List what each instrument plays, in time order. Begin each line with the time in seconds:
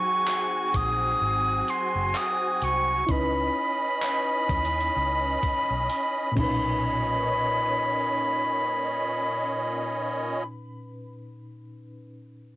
Already playing: fm electric piano F#3 C4 D#4 G#4, accordion C4 F#4 G#5, flute C#6
0.27 clap, closed hi-hat
0.74 fingered electric bass A#1, flute D#6, kick, closed hi-hat
1.21 fingered electric bass G#1
1.68 flute C6, closed hi-hat
1.95 fingered electric bass F#1
2.15 flute D#6, clap, closed hi-hat
2.62 fingered electric bass C2, flute C#6, closed hi-hat
3.07 fingered electric bass C#2, fm electric piano C#4 D#4 E4, accordion C#4 D#5 B5, kick, closed hi-hat
3.11 fm electric piano B4, flute B5
4.02 clap, closed hi-hat
4.49 fingered electric bass D#2, kick, closed hi-hat
4.65 closed hi-hat
4.80 closed hi-hat
4.96 fingered electric bass C#2
5.43 kick, closed hi-hat
5.71 fingered electric bass B1
5.90 closed hi-hat
6.32 fm electric piano A#2 C#4
6.36 fingered electric bass B1, accordion A#2 C#4 C#5 D#5, fm electric piano D#4, flute B5, kick, crash
6.43 fm electric piano B4